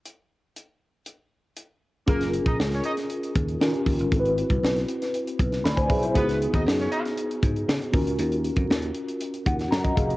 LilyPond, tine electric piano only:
\new Staff \with { instrumentName = "Tine electric piano" } { \time 4/4 \key fis \major \tempo 4 = 118 << { r1 | r1 | r2. <d'' b''>16 <bis' gis''>16 <gis' e''>16 <e' bis'>16~ | <e' bis'>16 r2. r8. |
r2 r8 fis''8 ais''16 <fis' dis''>16 <gis' eis''>16 <fis' dis''>16 | } \\ { r1 | <cis' eis' gis' ais'>2. <cis' eis' g' ais'>4 | <bis e' fis' a' b'>1 | <b dis' fis' gis'>2.~ <b dis' fis' gis'>8 <cis' eis' fis' ais'>8~ |
<cis' eis' fis' ais'>2.~ <cis' eis' fis' ais'>8 r8 | } >> }